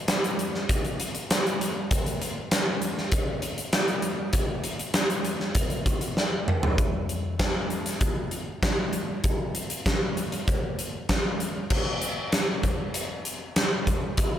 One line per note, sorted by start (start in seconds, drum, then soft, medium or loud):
0.08 snare loud
0.08 closed hi-hat loud
0.24 closed hi-hat medium
0.39 closed hi-hat medium
0.54 snare soft
0.69 kick loud
0.69 closed hi-hat loud
0.85 closed hi-hat soft
1.00 closed hi-hat medium
1.15 closed hi-hat soft
1.31 snare loud
1.31 closed hi-hat loud
1.47 closed hi-hat soft
1.61 closed hi-hat medium
1.91 kick loud
1.91 closed hi-hat loud
2.06 closed hi-hat medium
2.22 closed hi-hat medium
2.51 snare loud
2.51 closed hi-hat loud
2.82 closed hi-hat medium
2.98 snare soft
3.12 kick loud
3.12 closed hi-hat medium
3.42 closed hi-hat medium
3.58 closed hi-hat soft
3.73 snare loud
3.73 closed hi-hat loud
3.88 closed hi-hat soft
4.02 closed hi-hat medium
4.33 kick loud
4.33 closed hi-hat loud
4.64 closed hi-hat medium
4.79 closed hi-hat soft
4.94 snare loud
4.94 closed hi-hat loud
5.10 closed hi-hat soft
5.25 closed hi-hat medium
5.40 snare soft
5.55 kick loud
5.55 closed hi-hat loud
5.70 closed hi-hat soft
5.86 kick medium
5.86 closed hi-hat medium
6.01 closed hi-hat medium
6.17 snare medium
6.48 mid tom medium
6.63 floor tom loud
6.78 kick loud
6.78 closed hi-hat medium
7.09 closed hi-hat medium
7.39 kick loud
7.39 snare loud
7.39 closed hi-hat medium
7.70 closed hi-hat medium
7.86 snare soft
7.86 closed hi-hat medium
8.01 kick loud
8.01 closed hi-hat medium
8.31 closed hi-hat medium
8.63 kick loud
8.63 snare loud
8.63 closed hi-hat medium
8.93 closed hi-hat medium
9.24 kick loud
9.24 closed hi-hat medium
9.55 closed hi-hat medium
9.70 closed hi-hat medium
9.86 kick loud
9.86 snare loud
9.86 closed hi-hat medium
10.17 closed hi-hat medium
10.32 closed hi-hat medium
10.48 kick loud
10.48 closed hi-hat medium
10.79 closed hi-hat medium
11.09 kick loud
11.09 snare loud
11.09 closed hi-hat medium
11.40 closed hi-hat medium
11.70 kick loud
11.70 crash loud
12.02 closed hi-hat medium
12.32 snare loud
12.32 closed hi-hat medium
12.63 kick medium
12.63 closed hi-hat medium
12.94 closed hi-hat medium
13.25 closed hi-hat medium
13.56 snare loud
13.56 closed hi-hat medium
13.87 kick medium
13.87 closed hi-hat medium
14.17 kick loud
14.17 closed hi-hat medium